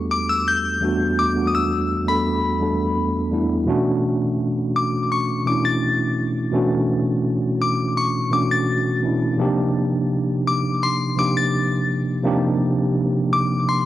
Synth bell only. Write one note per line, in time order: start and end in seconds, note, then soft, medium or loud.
0.11 0.29 D6 loud
0.29 0.47 E6 medium
0.48 1.21 G6 loud
1.19 1.45 D6 medium
1.47 1.54 D#6 medium
1.55 2.09 E6 loud
2.08 3.11 B5 medium
4.76 5.09 D6 medium
5.12 5.48 C#6 medium
5.47 5.65 D6 medium
5.65 6.15 A6 medium
7.62 7.98 D6 medium
7.97 8.34 C#6 medium
8.33 8.49 D6 medium
8.51 9.01 A6 medium
10.47 10.84 D6 medium
10.83 11.19 C6 medium
11.19 11.35 D6 medium
11.37 11.86 A6 medium
13.33 13.69 D6 medium
13.69 13.86 C6 medium